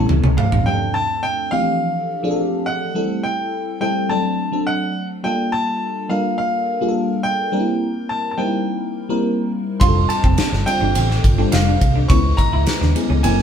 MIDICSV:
0, 0, Header, 1, 7, 480
1, 0, Start_track
1, 0, Key_signature, -1, "minor"
1, 0, Tempo, 571973
1, 557, Time_signature, 4, 2, 24, 8
1, 11264, End_track
2, 0, Start_track
2, 0, Title_t, "Grand piano"
2, 0, Program_c, 0, 0
2, 0, Note_on_c, 0, 73, 79
2, 283, Note_off_c, 0, 73, 0
2, 312, Note_on_c, 0, 77, 88
2, 553, Note_on_c, 0, 79, 106
2, 562, Note_off_c, 0, 77, 0
2, 789, Note_on_c, 0, 81, 111
2, 803, Note_off_c, 0, 79, 0
2, 1031, Note_on_c, 0, 79, 110
2, 1041, Note_off_c, 0, 81, 0
2, 1267, Note_on_c, 0, 77, 105
2, 1282, Note_off_c, 0, 79, 0
2, 2233, Note_on_c, 0, 78, 101
2, 2262, Note_off_c, 0, 77, 0
2, 2715, Note_on_c, 0, 79, 99
2, 2730, Note_off_c, 0, 78, 0
2, 3184, Note_off_c, 0, 79, 0
2, 3197, Note_on_c, 0, 79, 102
2, 3436, Note_on_c, 0, 81, 105
2, 3445, Note_off_c, 0, 79, 0
2, 3916, Note_on_c, 0, 78, 97
2, 3932, Note_off_c, 0, 81, 0
2, 4252, Note_off_c, 0, 78, 0
2, 4397, Note_on_c, 0, 79, 100
2, 4635, Note_on_c, 0, 81, 114
2, 4645, Note_off_c, 0, 79, 0
2, 5115, Note_on_c, 0, 77, 87
2, 5131, Note_off_c, 0, 81, 0
2, 5341, Note_off_c, 0, 77, 0
2, 5353, Note_on_c, 0, 77, 93
2, 6071, Note_on_c, 0, 79, 107
2, 6097, Note_off_c, 0, 77, 0
2, 6792, Note_on_c, 0, 81, 99
2, 6815, Note_off_c, 0, 79, 0
2, 6963, Note_off_c, 0, 81, 0
2, 6976, Note_on_c, 0, 81, 61
2, 7029, Note_on_c, 0, 79, 84
2, 7036, Note_off_c, 0, 81, 0
2, 7959, Note_off_c, 0, 79, 0
2, 8222, Note_on_c, 0, 84, 110
2, 8466, Note_on_c, 0, 81, 108
2, 8476, Note_off_c, 0, 84, 0
2, 8947, Note_on_c, 0, 79, 120
2, 8965, Note_off_c, 0, 81, 0
2, 9637, Note_off_c, 0, 79, 0
2, 9667, Note_on_c, 0, 77, 96
2, 10005, Note_off_c, 0, 77, 0
2, 10142, Note_on_c, 0, 85, 117
2, 10382, Note_on_c, 0, 82, 116
2, 10395, Note_off_c, 0, 85, 0
2, 11104, Note_on_c, 0, 80, 97
2, 11129, Note_off_c, 0, 82, 0
2, 11264, Note_off_c, 0, 80, 0
2, 11264, End_track
3, 0, Start_track
3, 0, Title_t, "Clean electric guitar"
3, 0, Program_c, 1, 27
3, 199, Note_on_c, 1, 61, 80
3, 282, Note_off_c, 1, 61, 0
3, 318, Note_on_c, 1, 57, 78
3, 401, Note_off_c, 1, 57, 0
3, 8235, Note_on_c, 1, 65, 91
3, 8319, Note_off_c, 1, 65, 0
3, 8591, Note_on_c, 1, 60, 86
3, 8676, Note_off_c, 1, 60, 0
3, 8711, Note_on_c, 1, 62, 83
3, 8796, Note_off_c, 1, 62, 0
3, 9073, Note_on_c, 1, 62, 88
3, 9157, Note_off_c, 1, 62, 0
3, 9195, Note_on_c, 1, 60, 86
3, 9278, Note_off_c, 1, 60, 0
3, 9554, Note_on_c, 1, 60, 77
3, 9637, Note_off_c, 1, 60, 0
3, 9792, Note_on_c, 1, 62, 86
3, 9877, Note_off_c, 1, 62, 0
3, 10033, Note_on_c, 1, 62, 73
3, 10117, Note_off_c, 1, 62, 0
3, 10155, Note_on_c, 1, 61, 91
3, 10238, Note_off_c, 1, 61, 0
3, 10515, Note_on_c, 1, 64, 83
3, 10598, Note_off_c, 1, 64, 0
3, 10755, Note_on_c, 1, 62, 78
3, 10838, Note_off_c, 1, 62, 0
3, 10993, Note_on_c, 1, 61, 96
3, 11077, Note_off_c, 1, 61, 0
3, 11114, Note_on_c, 1, 60, 84
3, 11197, Note_off_c, 1, 60, 0
3, 11264, End_track
4, 0, Start_track
4, 0, Title_t, "FM electric piano"
4, 0, Program_c, 2, 5
4, 0, Control_c, 2, 64, 127
4, 0, Note_on_c, 2, 55, 86
4, 0, Note_on_c, 2, 57, 81
4, 0, Note_on_c, 2, 61, 80
4, 0, Note_on_c, 2, 64, 83
4, 0, Note_on_c, 2, 69, 100
4, 383, Note_off_c, 2, 55, 0
4, 385, Note_off_c, 2, 57, 0
4, 385, Note_off_c, 2, 61, 0
4, 387, Note_off_c, 2, 64, 0
4, 388, Note_off_c, 2, 69, 0
4, 551, Note_on_c, 2, 53, 77
4, 553, Note_on_c, 2, 57, 75
4, 555, Note_on_c, 2, 60, 71
4, 559, Note_on_c, 2, 62, 75
4, 561, Note_on_c, 2, 67, 71
4, 567, Control_c, 2, 64, 0
4, 614, Note_off_c, 2, 67, 0
4, 617, Note_on_c, 2, 69, 91
4, 736, Control_c, 2, 64, 127
4, 1068, Note_off_c, 2, 53, 0
4, 1069, Note_off_c, 2, 57, 0
4, 1070, Note_off_c, 2, 60, 0
4, 1072, Note_off_c, 2, 62, 0
4, 1101, Note_off_c, 2, 69, 0
4, 1275, Note_on_c, 2, 52, 68
4, 1276, Note_on_c, 2, 57, 72
4, 1281, Note_on_c, 2, 60, 76
4, 1282, Note_on_c, 2, 62, 77
4, 1285, Note_on_c, 2, 67, 89
4, 1329, Note_on_c, 2, 53, 80
4, 1331, Note_off_c, 2, 52, 0
4, 1705, Note_off_c, 2, 57, 0
4, 1708, Note_off_c, 2, 60, 0
4, 1708, Note_off_c, 2, 62, 0
4, 1710, Note_off_c, 2, 67, 0
4, 1732, Note_off_c, 2, 53, 0
4, 1872, Note_on_c, 2, 53, 94
4, 1875, Note_on_c, 2, 57, 83
4, 1878, Note_on_c, 2, 60, 90
4, 1879, Note_on_c, 2, 62, 88
4, 1884, Note_on_c, 2, 68, 88
4, 1936, Note_off_c, 2, 68, 0
4, 1937, Note_on_c, 2, 69, 105
4, 2303, Note_off_c, 2, 53, 0
4, 2305, Note_off_c, 2, 57, 0
4, 2306, Note_off_c, 2, 60, 0
4, 2307, Note_off_c, 2, 62, 0
4, 2336, Note_off_c, 2, 69, 0
4, 2473, Note_on_c, 2, 55, 86
4, 2475, Note_on_c, 2, 57, 75
4, 2478, Note_on_c, 2, 60, 73
4, 2480, Note_on_c, 2, 64, 71
4, 2483, Note_on_c, 2, 69, 95
4, 2489, Control_c, 2, 64, 0
4, 2624, Control_c, 2, 64, 127
4, 2990, Note_off_c, 2, 55, 0
4, 2990, Note_off_c, 2, 57, 0
4, 2992, Note_off_c, 2, 60, 0
4, 2993, Note_off_c, 2, 64, 0
4, 2995, Note_off_c, 2, 69, 0
4, 3193, Note_on_c, 2, 55, 82
4, 3194, Note_on_c, 2, 57, 75
4, 3199, Note_on_c, 2, 60, 73
4, 3203, Note_on_c, 2, 64, 76
4, 3204, Note_on_c, 2, 69, 91
4, 3424, Note_off_c, 2, 57, 0
4, 3428, Note_off_c, 2, 60, 0
4, 3432, Note_on_c, 2, 54, 83
4, 3434, Note_on_c, 2, 57, 77
4, 3435, Note_off_c, 2, 69, 0
4, 3436, Note_off_c, 2, 55, 0
4, 3438, Note_on_c, 2, 60, 74
4, 3441, Note_off_c, 2, 64, 0
4, 3442, Note_on_c, 2, 62, 76
4, 3445, Note_on_c, 2, 69, 93
4, 3449, Control_c, 2, 64, 0
4, 3574, Control_c, 2, 64, 127
4, 3724, Note_off_c, 2, 54, 0
4, 3725, Note_off_c, 2, 57, 0
4, 3727, Note_off_c, 2, 60, 0
4, 3728, Note_off_c, 2, 62, 0
4, 3730, Note_off_c, 2, 69, 0
4, 3791, Note_on_c, 2, 54, 82
4, 3795, Note_on_c, 2, 57, 77
4, 3798, Note_on_c, 2, 60, 72
4, 3800, Note_on_c, 2, 62, 74
4, 3804, Note_on_c, 2, 69, 84
4, 4223, Note_off_c, 2, 54, 0
4, 4225, Note_off_c, 2, 57, 0
4, 4226, Note_off_c, 2, 60, 0
4, 4227, Note_off_c, 2, 62, 0
4, 4229, Note_off_c, 2, 69, 0
4, 4392, Note_on_c, 2, 55, 84
4, 4396, Note_on_c, 2, 58, 76
4, 4398, Note_on_c, 2, 62, 75
4, 4401, Note_on_c, 2, 65, 78
4, 4404, Note_on_c, 2, 69, 88
4, 4411, Control_c, 2, 64, 0
4, 4572, Control_c, 2, 64, 127
4, 4909, Note_off_c, 2, 55, 0
4, 4910, Note_off_c, 2, 58, 0
4, 4912, Note_off_c, 2, 62, 0
4, 4913, Note_off_c, 2, 65, 0
4, 4915, Note_off_c, 2, 69, 0
4, 5111, Note_on_c, 2, 55, 82
4, 5115, Note_on_c, 2, 58, 77
4, 5116, Note_on_c, 2, 62, 77
4, 5120, Note_on_c, 2, 65, 77
4, 5123, Note_on_c, 2, 70, 94
4, 5543, Note_off_c, 2, 55, 0
4, 5544, Note_off_c, 2, 58, 0
4, 5545, Note_off_c, 2, 62, 0
4, 5547, Note_off_c, 2, 65, 0
4, 5549, Note_off_c, 2, 70, 0
4, 5714, Note_on_c, 2, 55, 80
4, 5715, Note_on_c, 2, 58, 72
4, 5720, Note_on_c, 2, 62, 72
4, 5720, Note_on_c, 2, 65, 68
4, 5723, Note_on_c, 2, 68, 70
4, 5775, Note_off_c, 2, 68, 0
4, 5777, Note_on_c, 2, 69, 93
4, 6144, Note_off_c, 2, 55, 0
4, 6144, Note_off_c, 2, 58, 0
4, 6146, Note_off_c, 2, 62, 0
4, 6147, Note_off_c, 2, 65, 0
4, 6175, Note_off_c, 2, 69, 0
4, 6310, Note_on_c, 2, 55, 82
4, 6311, Note_on_c, 2, 58, 75
4, 6314, Note_on_c, 2, 60, 76
4, 6317, Note_on_c, 2, 62, 61
4, 6320, Note_on_c, 2, 70, 87
4, 6329, Control_c, 2, 64, 0
4, 6372, Note_off_c, 2, 62, 0
4, 6372, Note_on_c, 2, 64, 70
4, 6460, Control_c, 2, 64, 127
4, 6827, Note_off_c, 2, 55, 0
4, 6828, Note_off_c, 2, 58, 0
4, 6829, Note_off_c, 2, 60, 0
4, 6832, Note_off_c, 2, 70, 0
4, 6858, Note_off_c, 2, 64, 0
4, 7029, Note_on_c, 2, 55, 79
4, 7030, Note_on_c, 2, 58, 77
4, 7034, Note_on_c, 2, 60, 77
4, 7034, Note_on_c, 2, 63, 59
4, 7037, Note_on_c, 2, 70, 91
4, 7088, Note_on_c, 2, 64, 73
4, 7090, Note_off_c, 2, 63, 0
4, 7461, Note_off_c, 2, 55, 0
4, 7461, Note_off_c, 2, 58, 0
4, 7463, Note_off_c, 2, 60, 0
4, 7465, Note_off_c, 2, 70, 0
4, 7490, Note_off_c, 2, 64, 0
4, 7630, Note_on_c, 2, 55, 92
4, 7631, Note_on_c, 2, 58, 84
4, 7633, Note_on_c, 2, 60, 83
4, 7636, Note_on_c, 2, 64, 90
4, 7638, Note_on_c, 2, 70, 107
4, 8061, Note_off_c, 2, 55, 0
4, 8061, Note_off_c, 2, 58, 0
4, 8062, Note_off_c, 2, 60, 0
4, 8064, Note_off_c, 2, 64, 0
4, 8065, Note_off_c, 2, 70, 0
4, 8226, Note_on_c, 2, 55, 78
4, 8227, Note_on_c, 2, 60, 75
4, 8231, Note_on_c, 2, 62, 75
4, 8233, Note_on_c, 2, 65, 73
4, 8236, Note_on_c, 2, 67, 73
4, 8246, Control_c, 2, 64, 0
4, 8290, Note_off_c, 2, 67, 0
4, 8291, Note_on_c, 2, 69, 94
4, 8399, Control_c, 2, 64, 127
4, 8744, Note_off_c, 2, 55, 0
4, 8745, Note_off_c, 2, 60, 0
4, 8746, Note_off_c, 2, 62, 0
4, 8748, Note_off_c, 2, 65, 0
4, 8776, Note_off_c, 2, 69, 0
4, 8947, Note_on_c, 2, 55, 78
4, 8953, Note_on_c, 2, 60, 76
4, 8954, Note_on_c, 2, 62, 76
4, 8955, Note_on_c, 2, 65, 73
4, 8958, Note_on_c, 2, 72, 86
4, 9379, Note_off_c, 2, 55, 0
4, 9382, Note_off_c, 2, 60, 0
4, 9382, Note_off_c, 2, 62, 0
4, 9383, Note_off_c, 2, 65, 0
4, 9384, Note_off_c, 2, 72, 0
4, 9547, Note_on_c, 2, 55, 80
4, 9549, Note_on_c, 2, 60, 69
4, 9550, Note_on_c, 2, 62, 69
4, 9554, Note_on_c, 2, 65, 73
4, 9556, Note_on_c, 2, 69, 85
4, 9979, Note_off_c, 2, 55, 0
4, 9979, Note_off_c, 2, 60, 0
4, 9980, Note_off_c, 2, 62, 0
4, 9982, Note_off_c, 2, 65, 0
4, 9983, Note_off_c, 2, 69, 0
4, 10147, Note_on_c, 2, 56, 82
4, 10148, Note_on_c, 2, 59, 75
4, 10150, Note_on_c, 2, 61, 73
4, 10153, Note_on_c, 2, 64, 74
4, 10155, Note_on_c, 2, 71, 92
4, 10165, Control_c, 2, 64, 0
4, 10300, Control_c, 2, 64, 127
4, 10664, Note_off_c, 2, 56, 0
4, 10664, Note_off_c, 2, 59, 0
4, 10665, Note_off_c, 2, 61, 0
4, 10667, Note_off_c, 2, 64, 0
4, 10668, Note_off_c, 2, 71, 0
4, 10869, Note_on_c, 2, 56, 83
4, 10870, Note_on_c, 2, 59, 74
4, 10871, Note_on_c, 2, 61, 71
4, 10875, Note_on_c, 2, 64, 74
4, 10879, Note_on_c, 2, 68, 94
4, 11103, Note_off_c, 2, 61, 0
4, 11104, Note_off_c, 2, 64, 0
4, 11107, Note_on_c, 2, 54, 81
4, 11108, Note_on_c, 2, 58, 78
4, 11111, Note_off_c, 2, 56, 0
4, 11112, Note_off_c, 2, 59, 0
4, 11113, Note_on_c, 2, 61, 76
4, 11115, Note_on_c, 2, 64, 73
4, 11116, Note_off_c, 2, 68, 0
4, 11117, Note_on_c, 2, 70, 88
4, 11124, Control_c, 2, 64, 0
4, 11253, Control_c, 2, 64, 127
4, 11264, Note_off_c, 2, 54, 0
4, 11264, Note_off_c, 2, 58, 0
4, 11264, Note_off_c, 2, 61, 0
4, 11264, Note_off_c, 2, 64, 0
4, 11264, Note_off_c, 2, 70, 0
4, 11264, End_track
5, 0, Start_track
5, 0, Title_t, "Fingered electric bass"
5, 0, Program_c, 3, 33
5, 79, Note_on_c, 3, 37, 94
5, 168, Note_off_c, 3, 37, 0
5, 197, Note_on_c, 3, 37, 84
5, 287, Note_off_c, 3, 37, 0
5, 438, Note_on_c, 3, 33, 86
5, 527, Note_off_c, 3, 33, 0
5, 8233, Note_on_c, 3, 29, 109
5, 8413, Note_off_c, 3, 29, 0
5, 8593, Note_on_c, 3, 29, 89
5, 8684, Note_off_c, 3, 29, 0
5, 8833, Note_on_c, 3, 31, 87
5, 8923, Note_off_c, 3, 31, 0
5, 9076, Note_on_c, 3, 31, 87
5, 9165, Note_off_c, 3, 31, 0
5, 9197, Note_on_c, 3, 33, 101
5, 9375, Note_off_c, 3, 33, 0
5, 9435, Note_on_c, 3, 31, 96
5, 9614, Note_off_c, 3, 31, 0
5, 9676, Note_on_c, 3, 29, 96
5, 9855, Note_off_c, 3, 29, 0
5, 9915, Note_on_c, 3, 36, 87
5, 10094, Note_off_c, 3, 36, 0
5, 10154, Note_on_c, 3, 37, 104
5, 10333, Note_off_c, 3, 37, 0
5, 10513, Note_on_c, 3, 37, 108
5, 10603, Note_off_c, 3, 37, 0
5, 10752, Note_on_c, 3, 39, 90
5, 10842, Note_off_c, 3, 39, 0
5, 10993, Note_on_c, 3, 37, 95
5, 11083, Note_off_c, 3, 37, 0
5, 11111, Note_on_c, 3, 30, 118
5, 11264, Note_off_c, 3, 30, 0
5, 11264, End_track
6, 0, Start_track
6, 0, Title_t, "Muted clean electric guitar strokes"
6, 79, Note_on_c, 9, 29, 46
6, 163, Note_off_c, 9, 29, 0
6, 8475, Note_on_c, 9, 29, 45
6, 8559, Note_off_c, 9, 29, 0
6, 8832, Note_on_c, 9, 29, 49
6, 8916, Note_off_c, 9, 29, 0
6, 9312, Note_on_c, 9, 29, 45
6, 9396, Note_off_c, 9, 29, 0
6, 9912, Note_on_c, 9, 29, 48
6, 9996, Note_off_c, 9, 29, 0
6, 10392, Note_on_c, 9, 29, 47
6, 10476, Note_off_c, 9, 29, 0
6, 10876, Note_on_c, 9, 29, 49
6, 10960, Note_off_c, 9, 29, 0
6, 11264, End_track
7, 0, Start_track
7, 0, Title_t, "Drums"
7, 73, Note_on_c, 9, 62, 33
7, 73, Note_on_c, 9, 63, 71
7, 77, Note_on_c, 9, 48, 62
7, 157, Note_off_c, 9, 62, 0
7, 157, Note_off_c, 9, 63, 0
7, 161, Note_off_c, 9, 48, 0
7, 198, Note_on_c, 9, 47, 68
7, 282, Note_off_c, 9, 47, 0
7, 313, Note_on_c, 9, 64, 70
7, 318, Note_on_c, 9, 45, 95
7, 397, Note_off_c, 9, 64, 0
7, 402, Note_off_c, 9, 45, 0
7, 438, Note_on_c, 9, 43, 91
7, 522, Note_off_c, 9, 43, 0
7, 8232, Note_on_c, 9, 51, 82
7, 8233, Note_on_c, 9, 36, 113
7, 8316, Note_off_c, 9, 51, 0
7, 8317, Note_off_c, 9, 36, 0
7, 8350, Note_on_c, 9, 62, 36
7, 8434, Note_off_c, 9, 62, 0
7, 8474, Note_on_c, 9, 51, 62
7, 8558, Note_off_c, 9, 51, 0
7, 8592, Note_on_c, 9, 36, 91
7, 8676, Note_off_c, 9, 36, 0
7, 8708, Note_on_c, 9, 51, 75
7, 8715, Note_on_c, 9, 38, 114
7, 8792, Note_off_c, 9, 51, 0
7, 8799, Note_off_c, 9, 38, 0
7, 8833, Note_on_c, 9, 63, 68
7, 8840, Note_on_c, 9, 38, 41
7, 8917, Note_off_c, 9, 63, 0
7, 8924, Note_off_c, 9, 38, 0
7, 8958, Note_on_c, 9, 51, 60
7, 9042, Note_off_c, 9, 51, 0
7, 9065, Note_on_c, 9, 64, 79
7, 9149, Note_off_c, 9, 64, 0
7, 9190, Note_on_c, 9, 63, 73
7, 9190, Note_on_c, 9, 64, 75
7, 9192, Note_on_c, 9, 51, 80
7, 9274, Note_off_c, 9, 63, 0
7, 9274, Note_off_c, 9, 64, 0
7, 9276, Note_off_c, 9, 51, 0
7, 9318, Note_on_c, 9, 38, 43
7, 9402, Note_off_c, 9, 38, 0
7, 9432, Note_on_c, 9, 63, 73
7, 9434, Note_on_c, 9, 36, 101
7, 9436, Note_on_c, 9, 51, 66
7, 9516, Note_off_c, 9, 63, 0
7, 9518, Note_off_c, 9, 36, 0
7, 9520, Note_off_c, 9, 51, 0
7, 9667, Note_on_c, 9, 62, 35
7, 9667, Note_on_c, 9, 63, 70
7, 9669, Note_on_c, 9, 51, 87
7, 9679, Note_on_c, 9, 38, 120
7, 9751, Note_off_c, 9, 62, 0
7, 9751, Note_off_c, 9, 63, 0
7, 9753, Note_off_c, 9, 51, 0
7, 9763, Note_off_c, 9, 38, 0
7, 9910, Note_on_c, 9, 64, 71
7, 9914, Note_on_c, 9, 51, 66
7, 9915, Note_on_c, 9, 36, 88
7, 9994, Note_off_c, 9, 64, 0
7, 9998, Note_off_c, 9, 51, 0
7, 9999, Note_off_c, 9, 36, 0
7, 10152, Note_on_c, 9, 36, 123
7, 10152, Note_on_c, 9, 51, 84
7, 10236, Note_off_c, 9, 36, 0
7, 10236, Note_off_c, 9, 51, 0
7, 10271, Note_on_c, 9, 62, 35
7, 10354, Note_off_c, 9, 62, 0
7, 10393, Note_on_c, 9, 36, 84
7, 10395, Note_on_c, 9, 51, 59
7, 10477, Note_off_c, 9, 36, 0
7, 10479, Note_off_c, 9, 51, 0
7, 10628, Note_on_c, 9, 51, 71
7, 10635, Note_on_c, 9, 38, 113
7, 10637, Note_on_c, 9, 62, 31
7, 10712, Note_off_c, 9, 51, 0
7, 10719, Note_off_c, 9, 38, 0
7, 10721, Note_off_c, 9, 62, 0
7, 10754, Note_on_c, 9, 63, 75
7, 10756, Note_on_c, 9, 38, 39
7, 10838, Note_off_c, 9, 63, 0
7, 10840, Note_off_c, 9, 38, 0
7, 10874, Note_on_c, 9, 51, 61
7, 10958, Note_off_c, 9, 51, 0
7, 10987, Note_on_c, 9, 64, 72
7, 11071, Note_off_c, 9, 64, 0
7, 11109, Note_on_c, 9, 51, 78
7, 11112, Note_on_c, 9, 63, 75
7, 11112, Note_on_c, 9, 64, 74
7, 11193, Note_off_c, 9, 51, 0
7, 11196, Note_off_c, 9, 63, 0
7, 11196, Note_off_c, 9, 64, 0
7, 11235, Note_on_c, 9, 38, 42
7, 11236, Note_on_c, 9, 62, 36
7, 11264, Note_off_c, 9, 38, 0
7, 11264, Note_off_c, 9, 62, 0
7, 11264, End_track
0, 0, End_of_file